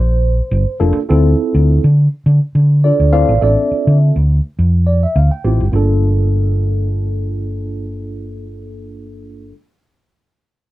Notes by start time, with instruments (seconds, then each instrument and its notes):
Already playing: fingered electric bass A#1, tine electric piano C5
0.51 fingered electric bass G1
0.80 fingered electric bass F1, tine electric piano A#3 D4 F4 A4
0.96 muted fingered electric bass stroke
1.09 fingered electric bass D2, tine electric piano C4 E4 F4 A4
1.55 fingered electric bass D2
1.84 fingered electric bass D3
2.26 fingered electric bass D3
2.55 fingered electric bass D3
2.84 tine electric piano D4 F4 A4 D5
3.00 fingered electric bass D2
3.13 tine electric piano C4 E4 F4 A4 C5 D5 F5
3.29 fingered electric bass A1
3.41 fingered electric bass A1, tine electric piano C4 D4 F4 A4 D5 E5
3.71 muted fingered electric bass stroke
3.87 fingered electric bass D3
4.16 fingered electric bass D2
4.59 fingered electric bass F2
4.87 tine electric piano D5
5.03 tine electric piano E5
5.16 fingered electric bass D2, tine electric piano F5
5.31 tine electric piano G5
5.44 fingered electric bass A1, tine electric piano C4 E4 F4 G4
5.60 fingered electric bass G1
5.72 fingered electric bass G1, tine electric piano A#3 D4 F4 A4